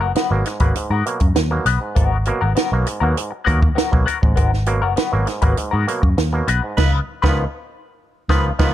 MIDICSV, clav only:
0, 0, Header, 1, 2, 480
1, 0, Start_track
1, 0, Tempo, 602410
1, 1566, Time_signature, 4, 2, 24, 8
1, 6963, End_track
2, 0, Start_track
2, 0, Title_t, "Clav"
2, 0, Program_c, 0, 7
2, 4, Note_on_c, 0, 54, 44
2, 5, Note_on_c, 0, 58, 44
2, 53, Note_off_c, 0, 54, 0
2, 54, Note_off_c, 0, 58, 0
2, 244, Note_on_c, 0, 47, 81
2, 248, Note_on_c, 0, 54, 68
2, 248, Note_on_c, 0, 58, 85
2, 359, Note_off_c, 0, 47, 0
2, 361, Note_off_c, 0, 54, 0
2, 361, Note_off_c, 0, 58, 0
2, 364, Note_on_c, 0, 44, 55
2, 478, Note_off_c, 0, 44, 0
2, 480, Note_on_c, 0, 47, 75
2, 482, Note_on_c, 0, 54, 67
2, 488, Note_on_c, 0, 58, 84
2, 597, Note_off_c, 0, 47, 0
2, 598, Note_off_c, 0, 54, 0
2, 600, Note_off_c, 0, 58, 0
2, 606, Note_on_c, 0, 44, 65
2, 720, Note_off_c, 0, 44, 0
2, 844, Note_on_c, 0, 47, 67
2, 844, Note_on_c, 0, 54, 65
2, 849, Note_on_c, 0, 58, 81
2, 958, Note_off_c, 0, 47, 0
2, 958, Note_off_c, 0, 58, 0
2, 959, Note_off_c, 0, 54, 0
2, 968, Note_on_c, 0, 58, 42
2, 969, Note_on_c, 0, 54, 41
2, 1015, Note_off_c, 0, 54, 0
2, 1015, Note_off_c, 0, 58, 0
2, 1202, Note_on_c, 0, 47, 67
2, 1203, Note_on_c, 0, 54, 61
2, 1205, Note_on_c, 0, 58, 81
2, 1317, Note_off_c, 0, 47, 0
2, 1318, Note_off_c, 0, 54, 0
2, 1319, Note_off_c, 0, 58, 0
2, 1441, Note_on_c, 0, 44, 57
2, 1557, Note_off_c, 0, 44, 0
2, 1565, Note_on_c, 0, 44, 59
2, 1679, Note_off_c, 0, 44, 0
2, 1808, Note_on_c, 0, 47, 98
2, 1810, Note_on_c, 0, 54, 78
2, 1810, Note_on_c, 0, 58, 106
2, 1921, Note_off_c, 0, 47, 0
2, 1921, Note_off_c, 0, 54, 0
2, 1922, Note_off_c, 0, 58, 0
2, 1932, Note_on_c, 0, 54, 46
2, 1933, Note_on_c, 0, 58, 51
2, 1977, Note_off_c, 0, 54, 0
2, 1977, Note_off_c, 0, 58, 0
2, 2170, Note_on_c, 0, 47, 71
2, 2173, Note_on_c, 0, 54, 64
2, 2175, Note_on_c, 0, 58, 86
2, 2281, Note_off_c, 0, 47, 0
2, 2283, Note_off_c, 0, 54, 0
2, 2284, Note_off_c, 0, 58, 0
2, 2294, Note_on_c, 0, 44, 55
2, 2403, Note_off_c, 0, 44, 0
2, 2410, Note_on_c, 0, 47, 76
2, 2412, Note_on_c, 0, 54, 72
2, 2412, Note_on_c, 0, 58, 88
2, 2522, Note_off_c, 0, 47, 0
2, 2522, Note_off_c, 0, 54, 0
2, 2523, Note_off_c, 0, 58, 0
2, 2530, Note_on_c, 0, 44, 56
2, 2642, Note_off_c, 0, 44, 0
2, 2762, Note_on_c, 0, 47, 71
2, 2764, Note_on_c, 0, 54, 66
2, 2767, Note_on_c, 0, 58, 81
2, 2875, Note_off_c, 0, 58, 0
2, 2876, Note_off_c, 0, 54, 0
2, 2878, Note_off_c, 0, 47, 0
2, 2885, Note_on_c, 0, 54, 44
2, 2885, Note_on_c, 0, 58, 46
2, 2933, Note_off_c, 0, 58, 0
2, 2934, Note_off_c, 0, 54, 0
2, 3120, Note_on_c, 0, 47, 72
2, 3124, Note_on_c, 0, 54, 75
2, 3124, Note_on_c, 0, 58, 79
2, 3237, Note_off_c, 0, 47, 0
2, 3239, Note_off_c, 0, 54, 0
2, 3239, Note_off_c, 0, 58, 0
2, 3364, Note_on_c, 0, 44, 61
2, 3473, Note_off_c, 0, 44, 0
2, 3482, Note_on_c, 0, 44, 61
2, 3598, Note_off_c, 0, 44, 0
2, 3719, Note_on_c, 0, 47, 89
2, 3721, Note_on_c, 0, 54, 84
2, 3724, Note_on_c, 0, 58, 111
2, 3832, Note_off_c, 0, 54, 0
2, 3833, Note_off_c, 0, 58, 0
2, 3837, Note_off_c, 0, 47, 0
2, 3841, Note_on_c, 0, 54, 46
2, 3842, Note_on_c, 0, 58, 52
2, 3892, Note_off_c, 0, 54, 0
2, 3893, Note_off_c, 0, 58, 0
2, 4079, Note_on_c, 0, 47, 85
2, 4082, Note_on_c, 0, 54, 78
2, 4085, Note_on_c, 0, 58, 90
2, 4197, Note_off_c, 0, 47, 0
2, 4198, Note_off_c, 0, 54, 0
2, 4200, Note_off_c, 0, 58, 0
2, 4206, Note_on_c, 0, 44, 59
2, 4320, Note_off_c, 0, 44, 0
2, 4320, Note_on_c, 0, 47, 79
2, 4324, Note_on_c, 0, 54, 72
2, 4325, Note_on_c, 0, 58, 83
2, 4437, Note_off_c, 0, 47, 0
2, 4439, Note_off_c, 0, 54, 0
2, 4440, Note_off_c, 0, 58, 0
2, 4445, Note_on_c, 0, 44, 63
2, 4560, Note_off_c, 0, 44, 0
2, 4680, Note_on_c, 0, 54, 71
2, 4681, Note_on_c, 0, 47, 79
2, 4684, Note_on_c, 0, 58, 87
2, 4792, Note_off_c, 0, 54, 0
2, 4792, Note_off_c, 0, 58, 0
2, 4798, Note_off_c, 0, 47, 0
2, 4802, Note_on_c, 0, 54, 39
2, 4802, Note_on_c, 0, 58, 51
2, 4853, Note_off_c, 0, 54, 0
2, 4853, Note_off_c, 0, 58, 0
2, 5044, Note_on_c, 0, 47, 74
2, 5044, Note_on_c, 0, 54, 64
2, 5046, Note_on_c, 0, 58, 83
2, 5160, Note_off_c, 0, 47, 0
2, 5160, Note_off_c, 0, 54, 0
2, 5161, Note_off_c, 0, 58, 0
2, 5286, Note_on_c, 0, 44, 55
2, 5401, Note_off_c, 0, 44, 0
2, 5764, Note_on_c, 0, 53, 108
2, 5766, Note_on_c, 0, 51, 114
2, 5769, Note_on_c, 0, 59, 120
2, 5930, Note_off_c, 0, 53, 0
2, 5931, Note_off_c, 0, 51, 0
2, 5932, Note_off_c, 0, 59, 0
2, 6611, Note_on_c, 0, 51, 100
2, 6613, Note_on_c, 0, 59, 98
2, 6614, Note_on_c, 0, 53, 109
2, 6774, Note_off_c, 0, 51, 0
2, 6775, Note_off_c, 0, 53, 0
2, 6775, Note_off_c, 0, 59, 0
2, 6845, Note_on_c, 0, 51, 118
2, 6846, Note_on_c, 0, 53, 113
2, 6852, Note_on_c, 0, 59, 114
2, 6963, Note_off_c, 0, 51, 0
2, 6963, Note_off_c, 0, 53, 0
2, 6963, Note_off_c, 0, 59, 0
2, 6963, End_track
0, 0, End_of_file